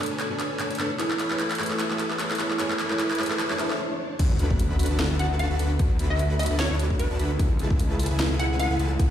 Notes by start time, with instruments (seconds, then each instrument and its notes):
Already playing: analog synth pad A3 D4 B4 C#5, riser
0.00 felt piano B2 B3 D4 A4 C#5, closed hi-hat
0.06 closed hi-hat
0.11 supersaw synth D4 A4 B4 C#5 G#5
0.19 clap, closed hi-hat
0.30 felt piano B2 B3 D4 A4 C#5, supersaw synth D4 A4 B4 C#5 G#5
0.40 clap, closed hi-hat
0.58 felt piano B2 B3 D4 A4 C#5, clap, closed hi-hat
0.71 supersaw synth D4 A4 B4 C#5 G#5, closed hi-hat
0.75 felt piano B2 B3, closed hi-hat
0.79 felt piano D4 A4 C#5, supersaw synth D4 A4 B4 C#5 A5, clap, closed hi-hat
0.98 felt piano A3 E4 G#4 B4 C#5, analog synth pad B3 A4, supersaw synth E4 A4 B4 C#5 G#5, clap, closed hi-hat
1.10 clap
1.19 supersaw synth E4 A4 B4 C#5 B5, clap, closed hi-hat
1.30 felt piano A3 E4 G#4 B4 C#5, clap
1.39 clap, closed hi-hat
1.51 clap, closed hi-hat
1.55 felt piano A3, closed hi-hat
1.59 felt piano E4 G#4 B4 C#5, clap, closed hi-hat
1.63 closed hi-hat
1.66 closed hi-hat
1.71 supersaw synth E4 A4 B4 C#5 A5, clap
1.79 clap, closed hi-hat
1.90 felt piano A3 E4 G#4 B4 C#5, supersaw synth E4 A4 B4 C#5 A5, clap
1.99 clap, closed hi-hat
2.10 clap
2.19 felt piano A3 E4 G#4 B4 C#5, clap, closed hi-hat
2.31 supersaw synth E4 A4 B4 C#5 A5, clap, closed hi-hat
2.35 felt piano A3, closed hi-hat
2.39 felt piano E4 G#4 B4 C#5, supersaw synth E4 A4 B4 C#5 B5, clap, closed hi-hat
2.51 clap
2.59 felt piano A3 E4 G#4 B4 C#5, supersaw synth E4 A4 B4 C#5 G#5, clap, closed hi-hat
2.70 clap
2.79 supersaw synth E4 A4 B4 C#5 B5, clap, closed hi-hat
2.89 felt piano A3 E4 G#4 B4 C#5, clap
2.99 clap, closed hi-hat
3.11 clap, closed hi-hat
3.15 felt piano A3 E4, closed hi-hat
3.19 felt piano G#4 B4 C#5, clap, closed hi-hat
3.23 closed hi-hat
3.26 closed hi-hat
3.30 supersaw synth E4 A4 B4 C#5 A5, clap
3.39 clap, closed hi-hat, swell
3.50 felt piano A3 E4 G#4 B4 C#5, supersaw synth E4 A4 B4 C#5 A5, clap
3.58 felt piano A3 E4 G#4 B4 E5, clap, closed hi-hat
3.70 clap
4.19 detuned saw bass D2, analog synth pad D3 B3 F#4, supersaw synth D4 F#4 A4 B4 F#5, kick, closed hi-hat, crash, impact
4.39 detuned saw bass D2, supersaw synth D4 F#4 A4 B4 B5, closed hi-hat
4.50 kick
4.59 closed hi-hat
4.79 closed hi-hat, open hi-hat
4.86 closed hi-hat
4.90 detuned saw bass D2, supersaw synth D4 F#4 A4 B4 A5
4.99 snare, closed hi-hat
5.10 detuned saw bass D2, supersaw synth D4 F#4 A4 B4 A5
5.19 synth pluck F#5, closed hi-hat
5.39 synth pluck F#5, closed hi-hat
5.50 detuned saw bass D2, supersaw synth D4 F#4 A4 B4 A5
5.59 detuned saw bass D2, supersaw synth D4 F#4 A4 B4 B5, closed hi-hat
5.79 detuned saw bass D2, supersaw synth D4 F#4 A4 B4 F#5, kick, closed hi-hat
5.99 detuned saw bass D2, supersaw synth D4 F#4 A4 B4 B5, closed hi-hat
6.10 synth pluck E5
6.19 closed hi-hat
6.39 synth pluck E5, closed hi-hat, open hi-hat
6.46 closed hi-hat
6.51 detuned saw bass D2, supersaw synth D4 F#4 A4 B4 A5
6.59 synth pluck C#5, snare, closed hi-hat
6.70 detuned saw bass D2, supersaw synth D4 F#4 A4 B4 A5, synth pluck C#5
6.79 closed hi-hat
6.90 kick
6.99 synth pluck B4, closed hi-hat
7.11 detuned saw bass D2, supersaw synth D4 F#4 A4 B4 A5
7.19 detuned saw bass D2, supersaw synth D4 F#4 A4 B4 B5, closed hi-hat
7.39 detuned saw bass C#2, analog synth pad B2 A3 E4, supersaw synth E4 G#4 A4 B4 F#5, kick, closed hi-hat
7.59 detuned saw bass C#2, supersaw synth E4 G#4 A4 B4 A5, closed hi-hat
7.70 kick
7.79 closed hi-hat
7.99 closed hi-hat, open hi-hat
8.06 closed hi-hat
8.11 detuned saw bass C#2, supersaw synth E4 G#4 A4 B4 G#5
8.19 snare, closed hi-hat
8.30 detuned saw bass C#2, supersaw synth E4 G#4 A4 B4 G#5
8.39 synth pluck F#5, closed hi-hat
8.59 synth pluck F#5, closed hi-hat
8.71 detuned saw bass C#2, supersaw synth E4 G#4 A4 B4 G#5
8.79 detuned saw bass C#2, supersaw synth E4 G#4 A4 B4 A5, closed hi-hat
8.99 detuned saw bass C#2, supersaw synth E4 G#4 A4 B4 F#5, kick, closed hi-hat